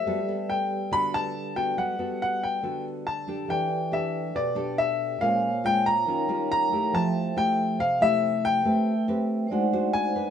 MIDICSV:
0, 0, Header, 1, 4, 480
1, 0, Start_track
1, 0, Tempo, 429492
1, 65, Time_signature, 4, 2, 24, 8
1, 11512, End_track
2, 0, Start_track
2, 0, Title_t, "Grand piano"
2, 0, Program_c, 0, 0
2, 0, Note_on_c, 0, 76, 94
2, 554, Note_on_c, 0, 79, 80
2, 570, Note_off_c, 0, 76, 0
2, 1036, Note_on_c, 0, 83, 104
2, 1043, Note_off_c, 0, 79, 0
2, 1277, Note_off_c, 0, 83, 0
2, 1278, Note_on_c, 0, 81, 102
2, 1747, Note_on_c, 0, 79, 81
2, 1765, Note_off_c, 0, 81, 0
2, 1991, Note_on_c, 0, 78, 80
2, 1992, Note_off_c, 0, 79, 0
2, 2466, Note_off_c, 0, 78, 0
2, 2483, Note_on_c, 0, 78, 86
2, 2720, Note_off_c, 0, 78, 0
2, 2721, Note_on_c, 0, 79, 74
2, 3159, Note_off_c, 0, 79, 0
2, 3427, Note_on_c, 0, 81, 87
2, 3913, Note_on_c, 0, 79, 82
2, 3919, Note_off_c, 0, 81, 0
2, 4395, Note_on_c, 0, 76, 81
2, 4402, Note_off_c, 0, 79, 0
2, 4871, Note_on_c, 0, 74, 83
2, 4882, Note_off_c, 0, 76, 0
2, 5346, Note_on_c, 0, 76, 90
2, 5361, Note_off_c, 0, 74, 0
2, 5823, Note_on_c, 0, 77, 84
2, 5838, Note_off_c, 0, 76, 0
2, 6317, Note_off_c, 0, 77, 0
2, 6322, Note_on_c, 0, 79, 101
2, 6536, Note_off_c, 0, 79, 0
2, 6552, Note_on_c, 0, 82, 93
2, 7265, Note_off_c, 0, 82, 0
2, 7282, Note_on_c, 0, 82, 106
2, 7763, Note_on_c, 0, 81, 97
2, 7766, Note_off_c, 0, 82, 0
2, 8244, Note_on_c, 0, 79, 95
2, 8246, Note_off_c, 0, 81, 0
2, 8720, Note_on_c, 0, 77, 96
2, 8726, Note_off_c, 0, 79, 0
2, 8957, Note_off_c, 0, 77, 0
2, 8964, Note_on_c, 0, 76, 100
2, 9443, Note_on_c, 0, 79, 98
2, 9447, Note_off_c, 0, 76, 0
2, 10107, Note_off_c, 0, 79, 0
2, 11103, Note_on_c, 0, 80, 97
2, 11512, Note_off_c, 0, 80, 0
2, 11512, End_track
3, 0, Start_track
3, 0, Title_t, "Vibraphone"
3, 0, Program_c, 1, 11
3, 0, Control_c, 1, 64, 127
3, 30, Note_on_c, 1, 55, 44
3, 48, Note_on_c, 1, 67, 41
3, 64, Note_on_c, 1, 69, 42
3, 80, Control_c, 1, 64, 0
3, 81, Note_on_c, 1, 71, 41
3, 97, Note_on_c, 1, 74, 49
3, 246, Control_c, 1, 64, 127
3, 3841, Note_off_c, 1, 55, 0
3, 3849, Note_off_c, 1, 67, 0
3, 3858, Note_off_c, 1, 69, 0
3, 3866, Note_off_c, 1, 71, 0
3, 3868, Note_on_c, 1, 67, 44
3, 3874, Note_off_c, 1, 74, 0
3, 3883, Note_on_c, 1, 69, 42
3, 3902, Note_on_c, 1, 71, 43
3, 3917, Control_c, 1, 64, 0
3, 3920, Note_on_c, 1, 74, 46
3, 3936, Note_on_c, 1, 79, 48
3, 4089, Control_c, 1, 64, 127
3, 5765, Note_off_c, 1, 67, 0
3, 5773, Note_off_c, 1, 69, 0
3, 5783, Note_off_c, 1, 71, 0
3, 5792, Note_off_c, 1, 74, 0
3, 5796, Note_on_c, 1, 58, 47
3, 5800, Note_off_c, 1, 79, 0
3, 5810, Note_on_c, 1, 72, 41
3, 5824, Note_on_c, 1, 73, 48
3, 5835, Control_c, 1, 64, 0
3, 5859, Note_on_c, 1, 80, 50
3, 5996, Control_c, 1, 64, 127
3, 6749, Note_off_c, 1, 58, 0
3, 6756, Note_off_c, 1, 72, 0
3, 6758, Note_on_c, 1, 63, 55
3, 6763, Note_off_c, 1, 73, 0
3, 6774, Note_on_c, 1, 70, 49
3, 6781, Note_off_c, 1, 80, 0
3, 6790, Note_on_c, 1, 73, 51
3, 6798, Control_c, 1, 64, 0
3, 6807, Note_on_c, 1, 77, 45
3, 6820, Note_on_c, 1, 79, 55
3, 6970, Control_c, 1, 64, 127
3, 7710, Note_off_c, 1, 63, 0
3, 7715, Note_on_c, 1, 53, 45
3, 7718, Note_off_c, 1, 70, 0
3, 7726, Note_off_c, 1, 73, 0
3, 7730, Note_on_c, 1, 69, 39
3, 7735, Note_off_c, 1, 77, 0
3, 7741, Note_off_c, 1, 79, 0
3, 7746, Note_on_c, 1, 72, 41
3, 7755, Control_c, 1, 64, 0
3, 7765, Note_on_c, 1, 76, 44
3, 7777, Note_on_c, 1, 79, 51
3, 7918, Control_c, 1, 64, 127
3, 9610, Note_off_c, 1, 53, 0
3, 9617, Note_off_c, 1, 69, 0
3, 9625, Note_off_c, 1, 72, 0
3, 9626, Note_on_c, 1, 57, 46
3, 9635, Note_off_c, 1, 76, 0
3, 9641, Note_off_c, 1, 79, 0
3, 9641, Note_on_c, 1, 71, 43
3, 9673, Note_on_c, 1, 76, 42
3, 9675, Control_c, 1, 64, 0
3, 9693, Note_on_c, 1, 79, 56
3, 9850, Control_c, 1, 64, 127
3, 10584, Note_off_c, 1, 57, 0
3, 10584, Note_on_c, 1, 56, 62
3, 10592, Note_off_c, 1, 71, 0
3, 10600, Note_on_c, 1, 72, 63
3, 10608, Note_off_c, 1, 76, 0
3, 10618, Note_on_c, 1, 74, 58
3, 10619, Note_off_c, 1, 79, 0
3, 10636, Note_on_c, 1, 63, 61
3, 10637, Control_c, 1, 64, 0
3, 10649, Note_on_c, 1, 78, 76
3, 10845, Control_c, 1, 64, 127
3, 11512, Note_off_c, 1, 56, 0
3, 11512, Note_off_c, 1, 63, 0
3, 11512, Note_off_c, 1, 72, 0
3, 11512, Note_off_c, 1, 74, 0
3, 11512, Note_off_c, 1, 78, 0
3, 11512, End_track
4, 0, Start_track
4, 0, Title_t, "Nylon-string guitar"
4, 0, Program_c, 2, 24
4, 69, Note_on_c, 2, 55, 74
4, 73, Note_on_c, 2, 59, 51
4, 79, Note_on_c, 2, 69, 65
4, 80, Note_on_c, 2, 66, 57
4, 210, Note_off_c, 2, 59, 0
4, 212, Note_off_c, 2, 66, 0
4, 213, Note_off_c, 2, 69, 0
4, 317, Note_on_c, 2, 59, 61
4, 322, Note_on_c, 2, 69, 60
4, 992, Note_off_c, 2, 59, 0
4, 995, Note_off_c, 2, 69, 0
4, 1002, Note_off_c, 2, 55, 0
4, 1022, Note_on_c, 2, 50, 71
4, 1022, Note_on_c, 2, 59, 53
4, 1025, Note_on_c, 2, 66, 49
4, 1031, Note_on_c, 2, 69, 58
4, 1499, Note_off_c, 2, 59, 0
4, 1502, Note_off_c, 2, 66, 0
4, 1504, Note_off_c, 2, 69, 0
4, 1743, Note_on_c, 2, 59, 57
4, 1746, Note_on_c, 2, 66, 66
4, 1750, Note_on_c, 2, 69, 57
4, 1959, Note_off_c, 2, 50, 0
4, 1986, Note_on_c, 2, 55, 67
4, 2185, Note_off_c, 2, 59, 0
4, 2187, Note_off_c, 2, 66, 0
4, 2188, Note_off_c, 2, 69, 0
4, 2223, Note_on_c, 2, 59, 59
4, 2226, Note_on_c, 2, 66, 50
4, 2234, Note_on_c, 2, 69, 52
4, 2905, Note_off_c, 2, 59, 0
4, 2905, Note_off_c, 2, 66, 0
4, 2910, Note_off_c, 2, 69, 0
4, 2920, Note_off_c, 2, 55, 0
4, 2938, Note_on_c, 2, 50, 61
4, 2942, Note_on_c, 2, 59, 52
4, 2943, Note_on_c, 2, 66, 58
4, 2949, Note_on_c, 2, 69, 54
4, 3418, Note_off_c, 2, 59, 0
4, 3420, Note_off_c, 2, 66, 0
4, 3423, Note_off_c, 2, 69, 0
4, 3661, Note_on_c, 2, 62, 60
4, 3667, Note_on_c, 2, 67, 61
4, 3672, Note_on_c, 2, 69, 65
4, 3876, Note_off_c, 2, 50, 0
4, 3892, Note_on_c, 2, 52, 68
4, 4103, Note_off_c, 2, 62, 0
4, 4107, Note_off_c, 2, 67, 0
4, 4108, Note_off_c, 2, 69, 0
4, 4375, Note_on_c, 2, 62, 61
4, 4381, Note_on_c, 2, 67, 53
4, 4390, Note_on_c, 2, 69, 65
4, 4833, Note_off_c, 2, 52, 0
4, 4856, Note_off_c, 2, 62, 0
4, 4858, Note_off_c, 2, 67, 0
4, 4860, Note_on_c, 2, 47, 62
4, 4863, Note_off_c, 2, 69, 0
4, 5086, Note_on_c, 2, 62, 67
4, 5092, Note_on_c, 2, 67, 55
4, 5096, Note_on_c, 2, 69, 71
4, 5775, Note_off_c, 2, 62, 0
4, 5778, Note_off_c, 2, 67, 0
4, 5779, Note_off_c, 2, 69, 0
4, 5796, Note_off_c, 2, 47, 0
4, 5823, Note_on_c, 2, 46, 73
4, 5826, Note_on_c, 2, 56, 57
4, 5829, Note_on_c, 2, 61, 61
4, 5832, Note_on_c, 2, 65, 52
4, 6131, Note_off_c, 2, 56, 0
4, 6135, Note_off_c, 2, 61, 0
4, 6135, Note_off_c, 2, 65, 0
4, 6303, Note_on_c, 2, 56, 58
4, 6307, Note_on_c, 2, 61, 53
4, 6312, Note_on_c, 2, 65, 60
4, 6625, Note_off_c, 2, 56, 0
4, 6626, Note_off_c, 2, 61, 0
4, 6629, Note_off_c, 2, 65, 0
4, 6759, Note_off_c, 2, 46, 0
4, 6784, Note_on_c, 2, 55, 55
4, 6789, Note_on_c, 2, 51, 65
4, 6795, Note_on_c, 2, 61, 55
4, 6797, Note_on_c, 2, 65, 53
4, 6984, Note_off_c, 2, 55, 0
4, 6988, Note_off_c, 2, 61, 0
4, 6991, Note_off_c, 2, 65, 0
4, 7025, Note_on_c, 2, 55, 69
4, 7030, Note_on_c, 2, 61, 56
4, 7034, Note_on_c, 2, 65, 77
4, 7465, Note_off_c, 2, 55, 0
4, 7466, Note_off_c, 2, 61, 0
4, 7469, Note_off_c, 2, 65, 0
4, 7510, Note_on_c, 2, 57, 61
4, 7515, Note_on_c, 2, 64, 60
4, 7526, Note_on_c, 2, 67, 69
4, 7721, Note_off_c, 2, 51, 0
4, 7748, Note_on_c, 2, 53, 75
4, 8187, Note_off_c, 2, 57, 0
4, 8190, Note_off_c, 2, 64, 0
4, 8195, Note_off_c, 2, 67, 0
4, 8229, Note_on_c, 2, 57, 61
4, 8232, Note_on_c, 2, 64, 58
4, 8240, Note_on_c, 2, 67, 67
4, 8680, Note_off_c, 2, 53, 0
4, 8702, Note_off_c, 2, 57, 0
4, 8704, Note_off_c, 2, 64, 0
4, 8706, Note_off_c, 2, 67, 0
4, 8706, Note_on_c, 2, 48, 59
4, 8951, Note_on_c, 2, 57, 61
4, 8957, Note_on_c, 2, 64, 71
4, 8962, Note_on_c, 2, 67, 68
4, 9628, Note_off_c, 2, 57, 0
4, 9631, Note_off_c, 2, 64, 0
4, 9632, Note_off_c, 2, 67, 0
4, 9639, Note_off_c, 2, 48, 0
4, 9668, Note_on_c, 2, 57, 73
4, 9668, Note_on_c, 2, 60, 52
4, 9671, Note_on_c, 2, 67, 50
4, 9679, Note_on_c, 2, 71, 63
4, 9973, Note_off_c, 2, 60, 0
4, 9975, Note_off_c, 2, 67, 0
4, 9979, Note_off_c, 2, 71, 0
4, 10146, Note_on_c, 2, 60, 65
4, 10150, Note_on_c, 2, 67, 57
4, 10157, Note_on_c, 2, 71, 63
4, 10601, Note_off_c, 2, 57, 0
4, 10605, Note_off_c, 2, 60, 0
4, 10606, Note_off_c, 2, 67, 0
4, 10610, Note_off_c, 2, 71, 0
4, 10627, Note_on_c, 2, 56, 64
4, 10633, Note_on_c, 2, 62, 57
4, 10635, Note_on_c, 2, 66, 51
4, 10638, Note_on_c, 2, 72, 56
4, 10767, Note_off_c, 2, 62, 0
4, 10767, Note_off_c, 2, 66, 0
4, 10771, Note_off_c, 2, 72, 0
4, 10871, Note_on_c, 2, 62, 56
4, 10877, Note_on_c, 2, 66, 65
4, 10879, Note_on_c, 2, 72, 73
4, 11308, Note_off_c, 2, 62, 0
4, 11311, Note_off_c, 2, 66, 0
4, 11311, Note_off_c, 2, 72, 0
4, 11344, Note_on_c, 2, 62, 56
4, 11353, Note_on_c, 2, 71, 60
4, 11512, Note_off_c, 2, 56, 0
4, 11512, Note_off_c, 2, 62, 0
4, 11512, Note_off_c, 2, 71, 0
4, 11512, End_track
0, 0, End_of_file